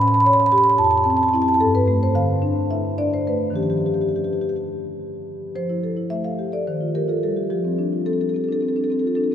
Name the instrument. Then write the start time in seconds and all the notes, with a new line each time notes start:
marimba
Already playing: A2 C#4
0.01 B5
0.08 B5
0.14 B5
0.20 B5
0.25 C#5 B5
0.33 B5
0.40 B5
0.46 B5
0.52 G4 B5
0.58 B5
0.64 B5
0.70 B5
0.78 F2 A5
0.84 A5
0.91 A5
0.98 A5
1.04 C4 A5
1.10 A5
1.17 A5
1.23 A5
1.29 A5
1.33 C4 E4 A5
1.42 A5
1.48 A5
1.54 A5
1.60 G2 A4
1.75 B4
1.88 A3
2.03 C5
2.15 D3 F5
2.42 D4
2.71 E4 E5
2.98 D4 D5
3.14 C5
3.27 A3 B4
3.50 D#3 F3 C#4
3.56 G4
3.63 G4
3.70 G4
3.78 G4
3.86 G4
3.94 G4
4.01 G4
4.08 G4
4.16 G4
4.24 G4
4.33 G4
4.41 G4
4.49 G4
4.56 G4
5.56 F3 C5
5.70 E4
5.84 A4
5.97 E4
6.10 A3 E5
6.24 A4 F5
6.39 G4
6.52 A4 D5
6.67 D#3 C5
6.81 F4
6.95 G4 A#4
7.08 F4 A4
7.23 G3 A4
7.37 G4
7.50 F3 G4
7.65 C4
7.79 D4
7.93 F4
8.06 C4 A4
8.13 A4
8.21 D4 A4
8.29 A4
8.34 C4 A4
8.44 A4
8.48 D4
8.53 A4
8.61 C4 A4
8.69 A4
8.76 D4 A4
8.84 A4
8.90 C4 A4
8.99 A4
9.04 F4 A4
9.15 D4 A4
9.24 A4
9.32 C4